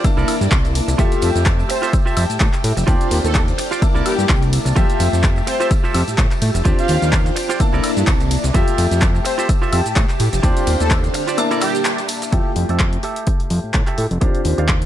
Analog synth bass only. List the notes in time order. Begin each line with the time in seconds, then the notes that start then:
0.17 C2
0.41 G2
0.52 C2
0.88 C2
0.99 F2
1.22 F2
1.35 F2
2.17 F2
2.30 A2
2.41 A2
2.64 A2
2.77 F1
2.88 D#2
3.11 D#2
3.24 D#2
3.95 C2
4.19 G2
4.29 C2
4.66 C2
4.76 F2
5.00 F2
5.13 F2
5.95 F2
6.08 A2
6.18 A2
6.42 A2
6.55 F1
6.65 D#2
6.89 D#2
7.02 D#2
7.73 C2
7.97 G2
8.08 C2
8.44 C2
8.55 F2
8.78 F2
8.91 F2
9.73 F2
9.86 A2
9.96 A2
10.20 A2
10.33 F1
10.44 D#2
10.67 D#2
10.81 D#2
12.33 F2
12.56 F2
12.69 F2
13.51 F2
13.64 A2
13.74 A2
13.98 A2
14.11 F1
14.22 D#2
14.45 D#2
14.58 D#2